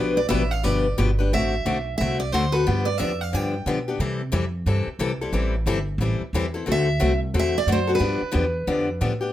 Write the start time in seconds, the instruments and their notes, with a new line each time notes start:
Already playing: upright bass B1, steel-string acoustic guitar B2 F3 B3 D4 G4 B4
0.17 steel-string acoustic guitar D5
0.29 upright bass A1, steel-string acoustic guitar B2 F3 B3 D4 G4 B4 E5
0.51 steel-string acoustic guitar F5
0.63 upright bass G1, steel-string acoustic guitar B2 F3 B3 D4 G4 B4 D5
0.98 upright bass G1, steel-string acoustic guitar B2 F3 B3 D4 G4 B4
1.19 steel-string acoustic guitar B3 D4 G4 B4
1.32 upright bass A1, steel-string acoustic guitar D3 A3 C4 F#4 A4 E5
1.66 upright bass B1, steel-string acoustic guitar D3 A3 C4 F#4 A4
1.98 upright bass C2, steel-string acoustic guitar D3 A3 C4 F#4 A4 E5
2.20 steel-string acoustic guitar D5
2.32 upright bass D2, steel-string acoustic guitar D3 A3 C4 F#4 A4 C5
2.52 steel-string acoustic guitar C4 F#4 A4 B4
2.67 upright bass G2, steel-string acoustic guitar D3 F3 B3 D4 G4
2.85 steel-string acoustic guitar D5
2.98 upright bass F2, steel-string acoustic guitar D3 F3 B3 D4 G4 E5
3.21 steel-string acoustic guitar F5
3.33 upright bass G2, steel-string acoustic guitar D3 F3 B3 D4 G4 G5
3.66 upright bass B2, steel-string acoustic guitar D3 F3 B3 D4 G4
3.88 steel-string acoustic guitar B3 D4 G4
3.99 upright bass C3, steel-string acoustic guitar C3 E3 G3 C4 E4 A4
4.32 upright bass F2, steel-string acoustic guitar C3 E3 G3 C4 E4 A4
4.66 upright bass G2, steel-string acoustic guitar C3 E3 G3 C4 E4 A4
4.87 muted upright bass stroke
4.99 upright bass C2, steel-string acoustic guitar C3 E3 G3 C4 E4 A4
5.21 steel-string acoustic guitar G3 C4 E4 A4
5.32 upright bass A1, steel-string acoustic guitar E3 G3 C4 E4 A4
5.66 upright bass G1, steel-string acoustic guitar E3 G3 C4 E4 A4
5.98 upright bass A1, steel-string acoustic guitar E3 G3 C4 E4 A4
6.20 muted upright bass stroke
6.33 upright bass E2, steel-string acoustic guitar E3 G3 C4 E4 A4
6.54 steel-string acoustic guitar C4 E4 A4
6.66 upright bass D2, steel-string acoustic guitar D3 A3 C4 F#4 A4
6.72 steel-string acoustic guitar E5
7.00 upright bass C2, steel-string acoustic guitar D3 A3 C4 F#4 A4
7.34 upright bass E2, steel-string acoustic guitar D3 A3 C4 F#4 A4
7.39 steel-string acoustic guitar E5
7.58 steel-string acoustic guitar D5
7.67 upright bass F#2, steel-string acoustic guitar D3 A3 C4 F#4 A4
7.72 steel-string acoustic guitar C5
7.87 steel-string acoustic guitar C4 F#4 A4
7.95 steel-string acoustic guitar D3 B4
7.99 upright bass G2, steel-string acoustic guitar F3 B3 D4 G4
8.21 muted upright bass stroke
8.32 upright bass E2, steel-string acoustic guitar D3 F3 B3 D4 G4
8.67 upright bass F2, steel-string acoustic guitar D3 F3 B3 D4 G4
9.01 upright bass A2, steel-string acoustic guitar D3 F3 B3 D4 G4
9.21 steel-string acoustic guitar B3 D4 G4